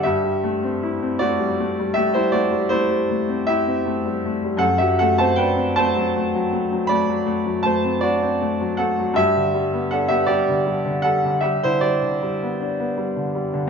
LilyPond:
<<
  \new Staff \with { instrumentName = "Grand piano" } { \time 12/8 \key a \dorian \tempo 4. = 52 <g' e''>4. <fis' d''>4 <g' e''>16 <e' c''>16 <fis' d''>8 <e' c''>4 <g' e''>4. | <a' fis''>16 <g' e''>16 <a' fis''>16 <c'' a''>16 <b' g''>8 <c'' a''>4. <d'' b''>4 <c'' a''>8 <fis' d''>4 <a' fis''>8 | <g' e''>4 <a' fis''>16 <g' e''>16 <g' d''>4 <a' fis''>8 <g' e''>16 <e' c''>16 <g' d''>4 r4. | }
  \new Staff \with { instrumentName = "Grand piano" } { \clef bass \time 12/8 \key a \dorian g,16 g16 a16 c'16 e'16 c'16 a16 g16 a16 g16 a16 g16 a16 g16 a16 g16 a16 c'16 e'16 c'16 a16 g16 a16 g16 | fis,16 fis16 a16 c'16 d'16 c'16 a16 fis16 a16 fis16 a16 fis16 a16 fis16 a16 fis16 a16 c'16 d'16 c'16 a16 fis16 a16 fis16 | g,16 d16 g16 b16 d'16 b16 g16 d16 g16 d16 g16 d16 g16 d16 g16 d16 g16 b16 d'16 b16 g16 d16 g16 d16 | }
>>